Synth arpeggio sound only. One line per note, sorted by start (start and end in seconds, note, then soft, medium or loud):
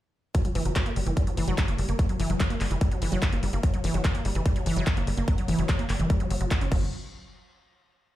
0.35 0.38 F#3 medium
0.45 0.53 F#3 medium
0.55 0.61 E3 loud
0.65 0.74 F#3 medium
0.76 0.81 F#3 medium
0.86 0.92 A#3 medium
0.96 1.00 G3 medium
1.07 1.12 E3 medium
1.17 1.20 G3 medium
1.27 1.36 F#3 medium
1.37 1.43 E3 loud
1.48 1.53 F#3 loud
1.58 1.64 F#3 medium
1.68 1.74 A#3 medium
1.78 1.82 G3 medium
1.89 1.94 A#3 medium
1.99 2.02 F#3 medium
2.09 2.18 F#3 medium
2.20 2.25 E3 loud
2.30 2.38 F#3 medium
2.40 2.46 F#3 medium
2.50 2.56 A#3 medium
2.61 2.64 G3 medium
2.71 2.77 E3 medium
2.81 2.85 G3 medium
2.91 3.00 F#3 medium
3.02 3.07 E3 loud
3.12 3.18 F#3 loud
3.33 3.38 A#3 medium
3.43 3.46 G3 medium
3.53 3.59 A#3 medium
3.63 3.67 F#3 medium
3.74 3.82 F#3 medium
3.84 3.90 E3 loud
3.94 4.03 F#3 medium
4.04 4.10 F#3 medium
4.15 4.20 A#3 medium
4.25 4.28 G3 medium
4.35 4.41 E3 medium
4.46 4.49 G3 medium
4.56 4.64 F#3 medium
4.66 4.72 E3 loud
4.76 4.82 F#3 loud
4.87 4.92 F#3 medium
4.97 5.03 A#3 medium
5.07 5.11 G3 medium
5.17 5.23 A#3 medium
5.28 5.31 F#3 medium
5.38 5.46 F#3 medium
5.48 5.54 E3 loud
5.59 5.67 F#3 medium
5.69 5.75 F#3 medium
5.79 5.85 A#3 medium
5.89 5.93 G3 medium
6.00 6.05 E3 medium
6.10 6.13 G3 medium
6.20 6.29 F#3 medium
6.31 6.36 F#3 medium
6.41 6.49 F#3 medium
6.51 6.60 F#4 medium
6.61 6.65 C#4 medium
6.72 6.91 F#3 medium